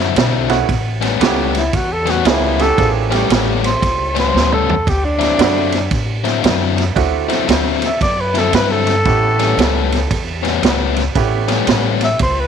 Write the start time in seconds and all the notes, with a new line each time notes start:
Already playing: F#2 F#3 C4 E4
0.00 D3
0.16 B1 D3 F#3 C4 E4, snare, ride
0.49 A3 B3 C#4 E4 F#4, snare, ride
0.69 A1, kick, snare, ride
1.01 A2 G3 B3 C#4, snare, ride
1.20 C#2 A2 G3 A3 B3 C#4 E4 G4, snare, ride
1.55 E4, snare, ride
1.73 E2 F#4, kick, snare, ride
1.92 A4
2.06 A2 G3 B3 C#4, snare, ride
2.10 F#4
2.25 C#2 A2 G3 A#3 B3 C4 C#4 D4 E4 F4 G#4, snare, ride
2.59 A3 B3 C#4 E4 G4 A4, snare, ride
2.77 A1 A#3 C4 D4 F4 G#4, kick, snare, ride
3.10 A2 G3 A3 B3 C#4 E4 G4, snare, ride
3.29 A1 A2 G3 B3 C#4, snare, ride
3.64 C5, snare, ride
3.82 C#2, kick, snare, ride
4.15 A2 G3 B3 C#4, snare, ride
4.19 C5
4.34 D2 A2 G3 B3 C#4, snare
4.52 A4, mid tom
4.70 floor tom
4.87 D2 G4, kick, snare, ride
5.05 D4
5.19 D3 F#3 C4 E4, snare, ride
5.38 F#2 D3 F#3 A3 C4 D4 E4 F#4, snare, ride
5.72 snare, ride
5.91 A2, kick, snare, ride
6.24 D3 F#3 C4 E4, snare, ride
6.42 F#2 D3 F#3 C4 E4, snare, ride
6.78 snare, ride
6.95 D2 A3 C4 D4 E4 F#4, kick, snare, ride
7.29 D3 F#3 C4 E4, snare, ride
7.47 D2 D3 F#3 C4 E4, snare, ride
7.82 E5, snare, ride
8.01 F#2 D5, kick, snare, ride
8.21 B4
8.34 D3 F#3 C4 E4 A4, snare, ride
8.53 G2 D3 F#3 C4 E4 B4, snare, ride
8.71 A4
8.87 snare, ride
9.05 A1 A3 B3 C#4 E4 G4, kick, snare, ride
9.39 A2 G3 B3 C#4, snare, ride
9.57 C#2 A2 G3 B3 C#4, snare, ride
9.92 snare, ride
10.11 E2, kick, snare, ride
10.43 A2 G3 B3 C#4, snare, ride
10.62 C#2 A2 G3 B3 C#4, snare, ride
10.96 snare, ride
11.15 A1 A3 B3 C#4 E4 G4, kick, snare, ride
11.48 A2 G3 B3 C#4, snare, ride
11.67 A1 A2 G3 B3 C#4, snare, ride
12.01 E5, snare, ride
12.19 C#2 C5, kick, snare, ride
12.40 B4